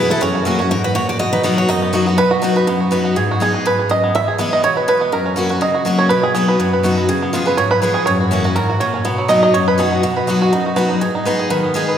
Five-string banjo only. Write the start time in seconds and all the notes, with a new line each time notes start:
Already playing: G#4 B4
0.10 E4
0.22 C#4
0.35 F#4
0.46 C#4
0.60 F#4
0.71 F#4
0.84 F#4
0.95 F#4
1.09 F#4
1.20 F#4
1.33 D#4
1.44 B3
1.58 F#4
1.69 D#4
1.82 B3
1.94 F#4
2.07 B3
2.18 B4
2.31 F#4
2.42 D#4
2.56 B4
2.67 B3
2.80 F#4
2.92 B4
3.05 B3
3.17 G#4
3.31 F#4
3.42 G#4
3.54 G#4
3.67 B4
3.79 G#4
3.91 D#5
4.03 B3
4.15 E5
4.28 G#4
4.39 B3
4.53 D#5
4.64 C#5
4.77 B4
4.89 B4
5.01 B3
5.13 A#4
5.26 C#4
5.37 F#4
5.50 F#4
5.62 D#5
5.74 F#4
5.85 F#4
5.99 C#5
6.09 B4
6.23 G#4
6.34 G#4
6.48 B4
6.60 B3
6.73 B4
6.84 F#4
6.98 B3
7.09 G#4
7.22 B3
7.33 F4
7.47 B4
7.57 C#5
7.71 B4
7.82 B4
7.94 G#4
8.06 C#5
8.20 F#4
8.31 C#4
8.45 F#4
8.55 A#4
8.69 F#4
8.80 C#5
8.94 C#4
9.05 B3
9.18 F#3
9.29 D#5
9.43 D#5
9.54 C#5
9.68 B4
9.79 G#4
9.92 F#4
10.03 F#4
10.16 B4
10.28 B3
10.41 F#4
10.52 D#4
10.66 F#4
10.76 B4
10.90 D#4
11.01 G#4
11.15 D#4
11.26 B4
11.39 G#4
11.51 B4
11.64 B3
11.75 G#4
11.88 B4